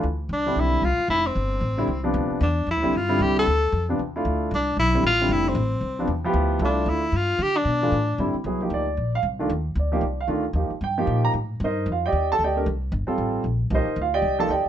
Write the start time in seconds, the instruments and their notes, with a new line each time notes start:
0.03 upright bass D2
0.29 upright bass C2, tenor saxophone D4
0.46 grand piano D3 G3 C4 E4
0.56 upright bass B1
0.60 tenor saxophone E4
0.82 upright bass C2, tenor saxophone F4
0.98 muted upright bass stroke
1.08 upright bass F1, tenor saxophone E4
1.27 tenor saxophone C4
1.35 upright bass G1
1.61 upright bass A1
1.78 grand piano D3 G3 C4 E4
1.88 upright bass C2
2.04 grand piano C3 F3 B3 D4
2.14 upright bass D2
2.30 muted upright bass stroke
2.41 upright bass E2, tenor saxophone D4
2.67 upright bass F2
2.71 tenor saxophone E4
2.76 upright bass D2
2.82 upright bass C2, grand piano D3 G3 C4 E4
2.93 upright bass G2, tenor saxophone F4
3.09 grand piano D3 G3 C4 E4
3.19 upright bass C2, tenor saxophone G4
3.39 tenor saxophone A4
3.46 upright bass D2
3.72 upright bass F2
3.89 grand piano C3 F3 B3 D4
3.99 upright bass E2
4.16 grand piano A3 D4 E4 F4
4.25 upright bass D2
4.51 upright bass C2, tenor saxophone D4
4.77 upright bass B1, tenor saxophone E4
4.94 grand piano D3 G3 C4 E4
5.03 upright bass A1, tenor saxophone F4
5.21 grand piano D3 G3 C4 E4
5.29 upright bass F1, tenor saxophone E4
5.49 tenor saxophone C4
5.55 upright bass A1
5.81 upright bass C2
5.99 grand piano C3 F3 B3 D4
6.07 upright bass E2
6.24 grand piano F3 B3 E4 G4
6.33 upright bass D2
6.59 upright bass C2, grand piano A3 D4 E4 F4
6.65 tenor saxophone D4
6.86 upright bass D2, tenor saxophone E4
7.12 upright bass G2
7.16 tenor saxophone F4
7.39 upright bass D3
7.43 tenor saxophone G4
7.57 tenor saxophone D4
7.65 upright bass B2
7.83 grand piano E3 A3 D4 F4
7.92 upright bass A2
8.18 upright bass G2, grand piano D3 G3 C4 E4
8.33 muted upright bass stroke
8.44 upright bass C2, grand piano F#3 B3 E4 G#4
8.61 grand piano F3 A#3 D#4 G4
8.70 upright bass D2, grand piano D5
8.97 upright bass A#1
9.15 grand piano F5
9.23 upright bass C2
9.39 grand piano D#3 A3 D4 F4
9.49 upright bass D#2
9.75 upright bass D2
9.79 grand piano D5
9.92 grand piano F3 A#3 D#4 G4
10.01 upright bass C2
10.21 grand piano F5
10.27 upright bass D2, grand piano D#3 A3 D4 F4
10.53 upright bass D#2, grand piano F3 A#3 D#4 G4
10.70 muted upright bass stroke
10.81 upright bass G2, grand piano G5
10.98 grand piano F3 A#3 D#4 G4
11.07 upright bass A#2
11.25 grand piano A#5
11.34 upright bass A2
11.60 upright bass G2
11.64 grand piano D#4 A#4 C5 D#5
11.86 upright bass F2
11.91 grand piano F4 F5
12.06 grand piano G4 D5 D#5 G5
12.12 upright bass D#2
12.32 grand piano A4 A5
12.39 upright bass D2
12.44 grand piano G4 D5 D#5 G5
12.56 grand piano A3 D4 G4 A#4
12.66 upright bass C2
12.92 upright bass G1
13.07 grand piano G3 C4 F4 A4, muted upright bass stroke
13.18 upright bass A1
13.44 upright bass A#1
13.70 upright bass C2, grand piano F3 A#3 D#4 G4
13.75 grand piano D#4 A#4 C5 D#5
13.86 muted upright bass stroke
13.96 upright bass D2
14.01 grand piano F4 F5
14.14 grand piano G4 D5 D#5 G5
14.22 upright bass C2
14.39 grand piano F3 A#3 D#4 A4 A5
14.49 upright bass D2, grand piano G4 D5 D#5 G5
14.65 muted upright bass stroke